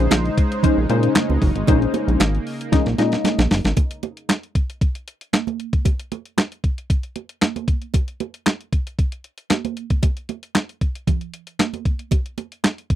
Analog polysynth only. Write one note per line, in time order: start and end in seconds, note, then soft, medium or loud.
0.00 0.11 G#3 medium
0.00 0.11 C#4 medium
0.00 0.11 D#4 medium
0.00 0.11 C5 medium
0.63 0.77 G#3 medium
0.63 0.77 C#4 medium
0.63 0.77 D#4 medium
0.63 0.77 C5 loud
0.89 1.29 G#3 medium
0.89 1.29 C#4 medium
0.89 1.29 D#4 medium
0.89 1.29 C5 medium
1.68 2.20 G#3 medium
1.68 2.20 C#4 medium
1.68 2.20 D#4 medium
1.68 2.20 C5 loud
2.72 2.86 G#3 medium
2.72 2.86 C#4 medium
2.72 2.86 D#4 medium
2.72 2.86 D#5 medium
2.98 3.38 G#3 medium
2.98 3.38 C#4 medium
2.98 3.38 D#4 medium
2.98 3.38 D#5 medium